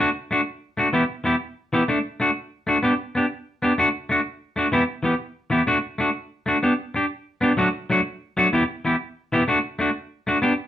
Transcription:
0.01 F#4
0.31 A3 D4 F#4
0.77 A3 D4 F#4
0.93 E3 B3 E4 G4
1.24 E3 B3 E4 G4
1.73 E3 B3 E4 G4
1.88 A3 D4, muted clean electric guitar stroke
2.20 A3 D4 F#4
2.67 A3 D4 F#4
2.83 B3 D4 G4
3.15 B3 D4 G4
3.62 B3 D4 G4
3.78 A3 D4 F#4
4.09 A3 D4 F#4
4.56 A3 D4 F#4
4.72 E3 B3 E4 G4
5.03 E3 B3 G4, muted clean electric guitar stroke
5.50 E3 B3 E4 G4
5.67 A3 D4 F#4
5.98 A3 D4 F#4
6.46 A3 D4 F#4
6.63 B3 D4 G4
6.94 D4 G4, muted clean electric guitar stroke
7.41 B3 D4 G4
7.57 F#3 A3 D4 F#4
7.90 F#3 A3 D4 F#4
8.37 F#3 A3 D4 F#4
8.53 E3 B3 E4 G4
8.85 E3 B3 E4 G4
9.32 E3 B3 E4 G4
9.48 A3 D4 F#4
9.79 A3 D4 F#4
10.27 A3 D4 F#4
10.42 B3 D4 G4

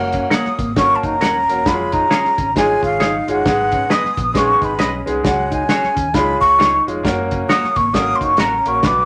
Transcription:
Already playing: F#1 A#3 C#4 F#4 A#4 F#5
0.13 C#4, kick, closed hi-hat
0.30 A#3 A#4 C#5 F#5 D#6, snare, closed hi-hat
0.45 muted fingered electric bass stroke, snare
0.58 G#1 A#3, kick, closed hi-hat
0.76 A#3 C#4 F#4 A4 C#6, kick, snare, closed hi-hat
0.83 A#4
0.96 A5
1.03 F#1 D#4 A#5, kick, closed hi-hat
1.21 D#1 C#4 A#4 C#5 F#5, snare, closed hi-hat
1.48 E1 A#3 C#4 F#4 A#4, closed hi-hat
1.66 F1 G#3 C#4 F4 F#4 B5, kick, snare, closed hi-hat
1.73 G#4
1.92 D#4 A#5, kick, closed hi-hat
2.10 C#4 G#4 C#5 F5, snare, closed hi-hat
2.24 muted fingered electric bass stroke, snare
2.38 G#1 C#4, kick, closed hi-hat
2.55 G#3 C#4 D#4 F4 G#4 G#5, kick, snare, closed hi-hat
2.83 G#1 F4 F5, kick, closed hi-hat
3.00 D#4 G#4 C#5 F5, snare, closed hi-hat
3.27 G1 G#3 C#4 F4 G#4, closed hi-hat
3.31 F#5
3.45 G#1 G#3 B3 D#4 G#4, kick, snare, closed hi-hat
3.72 C#4, kick, closed hi-hat
3.90 B3 G#4 B4 D#5 D#6, snare, closed hi-hat
4.04 muted fingered electric bass stroke, snare
4.17 A#1 B3, kick, closed hi-hat
4.34 G#3 B3 C#4 D#4 G#4 C#6, kick, snare, closed hi-hat
4.61 G#1 D#4 B5, kick, closed hi-hat
4.78 B1 C#4 G#4 B4 D#5, snare, closed hi-hat
5.06 C2 G#3 B3 D#4 G#4, closed hi-hat
5.23 C#2 G#3 C#4 F#4 G#4 F#5, kick, snare, closed hi-hat
5.51 D#4 G#5, kick, closed hi-hat
5.68 C#4 F#4 G#4 C#5, snare, closed hi-hat
5.83 muted fingered electric bass stroke, snare
5.95 D#2 C#4, kick, closed hi-hat
6.13 C#2 G#3 C#4 D#4 F4 G#4 B5, kick, snare, closed hi-hat
6.40 C#2 F4 C#6, kick, closed hi-hat
6.59 D#4 F4 G#4 C#5, snare, closed hi-hat
6.87 F1 G#3 C#4 F4 G#4, closed hi-hat
7.03 F#1 A#3 C#4 F#4 A#4, kick, snare, closed hi-hat
7.31 C#4, kick, closed hi-hat
7.49 A#3 F#4 A#4 C#5 D#6, snare, closed hi-hat
7.62 muted fingered electric bass stroke, snare
7.76 G#1 A#3 C#6, kick, closed hi-hat
7.93 A#3 C#4 F#4 A4 D#6, kick, snare, closed hi-hat
8.00 A#4
8.16 C6
8.21 F#1 D#4 C#6, kick, closed hi-hat
8.37 A1 C#4 F#4 A#4 C#5 A#5, snare, closed hi-hat
8.65 A#1 A#3 C#4 F#4 A#4 C#6, closed hi-hat
8.83 B1 B3 D4 F#4 B4 D6, kick, snare, closed hi-hat

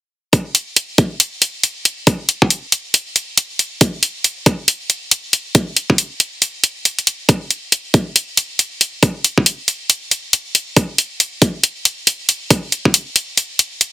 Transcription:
0.33 kick, closed hi-hat
0.55 closed hi-hat
0.76 closed hi-hat
0.98 kick, closed hi-hat
1.20 closed hi-hat
1.42 closed hi-hat
1.63 closed hi-hat
1.85 closed hi-hat
2.07 kick, closed hi-hat
2.29 closed hi-hat
2.42 kick
2.50 closed hi-hat
2.72 closed hi-hat
2.94 closed hi-hat
3.16 closed hi-hat
3.37 closed hi-hat
3.59 closed hi-hat
3.81 kick, closed hi-hat
4.03 closed hi-hat
4.24 closed hi-hat
4.46 kick, closed hi-hat
4.68 closed hi-hat
4.90 closed hi-hat
5.11 closed hi-hat
5.33 closed hi-hat
5.55 kick, closed hi-hat
5.76 closed hi-hat
5.90 kick
5.98 closed hi-hat
6.20 closed hi-hat
6.42 closed hi-hat
6.64 closed hi-hat
6.85 closed hi-hat
6.99 closed hi-hat
7.07 closed hi-hat
7.29 kick, closed hi-hat
7.51 closed hi-hat
7.72 closed hi-hat
7.94 kick, closed hi-hat
8.16 closed hi-hat
8.37 closed hi-hat
8.59 closed hi-hat
8.81 closed hi-hat
9.03 kick, closed hi-hat
9.24 closed hi-hat
9.38 kick
9.46 closed hi-hat
9.68 closed hi-hat
9.90 closed hi-hat
10.11 closed hi-hat
10.33 closed hi-hat
10.55 closed hi-hat
10.76 kick, closed hi-hat
10.98 closed hi-hat
11.20 closed hi-hat
11.42 kick, closed hi-hat
11.63 closed hi-hat
11.85 closed hi-hat
12.07 closed hi-hat
12.29 closed hi-hat
12.50 kick, closed hi-hat
12.72 closed hi-hat
12.85 kick
12.94 closed hi-hat
13.16 closed hi-hat
13.37 closed hi-hat
13.59 closed hi-hat
13.81 closed hi-hat

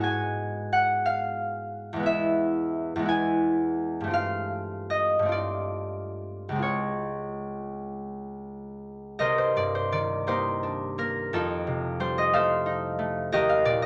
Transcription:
Already playing: G#2 G#3 B3
0.01 F#4 G#5
0.73 F#5
1.06 F5
1.93 E2 G#3
2.00 B3 E4
2.06 E5
2.96 E2 G#3
3.02 B3 E4
3.09 G#5
4.00 G2 A3
4.07 C4 F4
4.13 F5
4.90 D#5
5.19 G2 A3
5.25 C4 F4
5.32 D5
6.49 C#2 G#3
6.55 C4 F4
6.62 C#5
9.19 C2 A#4 C5 D#5
9.38 C5
9.56 G2 D5
9.75 C5
9.92 D#3 D5
10.27 A#3 D#4 G4 C5
10.63 D4
10.98 A#3 A#4
11.33 F2 D#4 F4 A4
11.67 C3
12.00 G3 C5
12.18 D#5
12.33 A3 A4 C5 F5
12.66 D#4
12.99 A3
13.32 D#2 G4 A#4 D#5
13.49 F5
13.65 A#2 D5
13.82 D#5

